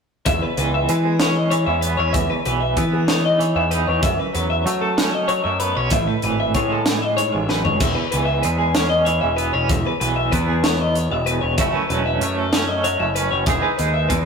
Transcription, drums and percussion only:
0.26 kick loud
0.26 closed hi-hat medium
0.57 closed hi-hat medium
0.89 closed hi-hat medium
1.20 snare loud
1.20 closed hi-hat medium
1.51 closed hi-hat medium
1.82 closed hi-hat medium
2.14 kick loud
2.14 closed hi-hat medium
2.45 closed hi-hat medium
2.77 kick medium
2.77 closed hi-hat medium
3.08 snare loud
3.08 closed hi-hat medium
3.41 closed hi-hat medium
3.71 closed hi-hat medium
4.03 kick loud
4.03 closed hi-hat medium
4.35 closed hi-hat medium
4.67 closed hi-hat medium
4.98 snare loud
4.98 closed hi-hat medium
5.29 closed hi-hat soft
5.60 closed hi-hat medium
5.90 kick loud
5.90 closed hi-hat medium
6.22 closed hi-hat medium
6.54 kick medium
6.54 closed hi-hat medium
6.86 snare loud
6.86 closed hi-hat medium
7.18 closed hi-hat medium
7.49 snare medium
7.65 floor tom medium
7.80 kick loud
7.80 closed hi-hat medium
7.80 crash medium
8.12 closed hi-hat medium
8.43 closed hi-hat medium
8.75 snare loud
8.75 closed hi-hat medium
9.06 closed hi-hat soft
9.38 closed hi-hat medium
9.69 kick loud
9.69 closed hi-hat medium
10.01 closed hi-hat medium
10.32 kick medium
10.32 closed hi-hat medium
10.64 snare loud
10.64 closed hi-hat medium
10.95 closed hi-hat soft
11.27 closed hi-hat medium
11.58 kick loud
11.58 closed hi-hat medium
11.90 closed hi-hat medium
12.21 closed hi-hat medium
12.53 snare loud
12.53 closed hi-hat medium
12.84 closed hi-hat medium
13.16 closed hi-hat medium
13.46 kick loud
13.46 closed hi-hat medium
13.79 closed hi-hat medium
14.10 kick medium
14.10 closed hi-hat medium

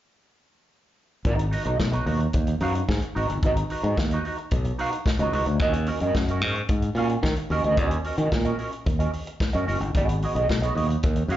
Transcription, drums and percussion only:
1.25 kick loud
1.25 closed hi-hat medium
1.39 closed hi-hat medium
1.52 open hi-hat medium
1.64 closed hi-hat soft
1.80 kick medium
1.80 snare loud
1.93 closed hi-hat soft
2.06 open hi-hat soft
2.20 closed hi-hat soft
2.33 kick loud
2.33 closed hi-hat medium
2.47 closed hi-hat soft
2.60 open hi-hat medium
2.75 closed hi-hat medium
2.89 kick medium
2.89 snare medium
3.02 closed hi-hat soft
3.16 open hi-hat medium
3.30 closed hi-hat soft
3.43 kick loud
3.43 closed hi-hat medium
3.56 closed hi-hat medium
3.70 open hi-hat medium
3.84 closed hi-hat soft
3.97 kick medium
3.97 snare loud
4.11 closed hi-hat soft
4.25 open hi-hat soft
4.38 closed hi-hat soft
4.51 kick loud
4.51 closed hi-hat medium
4.64 closed hi-hat soft
4.79 open hi-hat medium
4.93 closed hi-hat medium
5.06 kick loud
5.06 snare medium
5.19 closed hi-hat soft
5.33 open hi-hat medium
5.46 closed hi-hat soft
5.59 kick loud
5.59 closed hi-hat medium
5.73 closed hi-hat medium
5.87 open hi-hat medium
6.00 closed hi-hat soft
6.15 kick medium
6.15 snare loud
6.28 closed hi-hat soft
6.42 open hi-hat soft
6.56 closed hi-hat soft
6.69 kick loud
6.69 closed hi-hat medium
6.82 closed hi-hat soft
6.96 open hi-hat medium
7.09 closed hi-hat medium
7.23 kick medium
7.23 snare medium
7.37 closed hi-hat soft
7.51 open hi-hat medium
7.64 closed hi-hat medium
7.77 kick loud
7.77 closed hi-hat medium
7.91 closed hi-hat medium
8.04 open hi-hat medium
8.18 closed hi-hat soft
8.32 kick medium
8.32 snare loud
8.45 closed hi-hat soft
8.59 open hi-hat soft
8.72 closed hi-hat soft
8.86 kick loud
8.86 closed hi-hat medium
9.00 closed hi-hat soft
9.13 open hi-hat medium
9.27 closed hi-hat medium
9.40 kick loud
9.40 snare loud
9.53 closed hi-hat soft
9.68 open hi-hat medium
9.82 closed hi-hat soft
9.95 kick loud
9.95 closed hi-hat medium
10.09 closed hi-hat medium
10.22 open hi-hat medium
10.36 closed hi-hat soft
10.49 kick medium
10.49 snare loud
10.63 closed hi-hat soft
10.77 open hi-hat medium
10.90 closed hi-hat soft
11.03 kick loud
11.03 closed hi-hat medium
11.16 closed hi-hat soft
11.30 open hi-hat medium

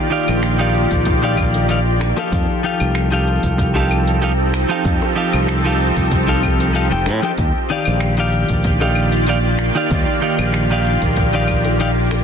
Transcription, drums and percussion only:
0.11 shaker medium
0.28 open hi-hat soft
0.28 claves medium
0.28 shaker soft
0.43 finger snap medium
0.43 open hi-hat soft
0.43 shaker soft
0.59 open hi-hat soft
0.74 shaker medium
0.91 kick medium
0.91 open hi-hat soft
0.91 shaker soft
1.05 kick loud
1.05 open hi-hat soft
1.05 shaker soft
1.23 open hi-hat soft
1.37 kick medium
1.37 claves medium
1.37 shaker medium
1.54 open hi-hat soft
1.54 high bongo soft
1.54 shaker soft
1.69 open hi-hat medium
1.69 shaker soft
2.00 finger snap medium
2.00 high bongo medium
2.00 shaker medium
2.18 open hi-hat soft
2.18 high bongo medium
2.18 shaker soft
2.32 kick loud
2.32 open hi-hat soft
2.32 shaker soft
2.49 shaker soft
2.64 shaker medium
2.80 open hi-hat soft
2.80 claves medium
2.80 shaker soft
2.95 finger snap medium
2.95 open hi-hat medium
2.95 shaker soft
3.12 open hi-hat soft
3.27 shaker medium
3.43 kick medium
3.43 open hi-hat soft
3.43 shaker soft
3.58 kick loud
3.58 open hi-hat soft
3.58 shaker soft
3.76 open hi-hat soft
3.76 high bongo medium
3.91 claves medium
3.91 shaker medium
4.07 open hi-hat soft
4.07 shaker soft
4.22 open hi-hat medium
4.22 high bongo soft
4.22 shaker soft
4.54 finger snap medium
4.54 shaker medium
4.70 open hi-hat soft
4.70 shaker soft
4.85 kick loud
4.85 open hi-hat soft
4.85 shaker soft
5.02 high bongo medium
5.02 shaker soft
5.17 shaker medium
5.33 open hi-hat soft
5.33 claves medium
5.33 shaker soft
5.48 finger snap medium
5.48 open hi-hat soft
5.48 shaker soft
5.65 open hi-hat soft
5.65 shaker soft
5.80 shaker medium
5.96 kick medium
5.96 open hi-hat soft
5.96 shaker soft
6.11 kick loud
6.11 open hi-hat soft
6.11 shaker soft
6.28 open hi-hat soft
6.43 kick medium
6.43 claves medium
6.43 shaker medium
6.60 open hi-hat soft
6.60 high bongo soft
6.60 shaker soft
6.75 open hi-hat medium
6.75 shaker soft
7.06 finger snap medium
7.06 high bongo medium
7.06 shaker medium
7.23 open hi-hat soft
7.23 high bongo medium
7.23 shaker soft
7.38 kick loud
7.38 open hi-hat medium
7.38 shaker soft
7.55 shaker soft
7.70 shaker medium
7.85 open hi-hat soft
7.85 claves medium
7.85 shaker soft
8.00 finger snap medium
8.00 open hi-hat medium
8.00 shaker soft
8.17 open hi-hat soft
8.32 shaker medium
8.49 kick medium
8.49 open hi-hat soft
8.49 shaker soft
8.64 kick loud
8.64 open hi-hat soft
8.64 shaker soft
8.81 open hi-hat soft
8.81 high bongo medium
8.95 claves medium
8.95 shaker medium
9.12 open hi-hat soft
9.12 shaker soft
9.27 open hi-hat medium
9.27 high bongo soft
9.27 shaker soft
9.59 finger snap medium
9.59 shaker medium
9.76 open hi-hat soft
9.76 shaker soft
9.91 kick loud
9.91 open hi-hat medium
9.91 shaker soft
10.08 shaker soft
10.22 shaker medium
10.39 open hi-hat soft
10.39 claves medium
10.39 shaker soft
10.54 finger snap medium
10.54 open hi-hat medium
10.54 shaker soft
10.71 open hi-hat soft
10.86 shaker medium
11.02 kick medium
11.02 open hi-hat soft
11.02 shaker soft
11.16 kick loud
11.16 open hi-hat soft
11.16 shaker soft
11.33 open hi-hat soft
11.48 kick medium
11.48 claves medium
11.48 shaker medium
11.64 open hi-hat soft
11.64 high bongo soft
11.64 shaker soft
11.80 open hi-hat medium
11.80 shaker soft
12.11 finger snap medium
12.11 high bongo medium
12.11 shaker medium

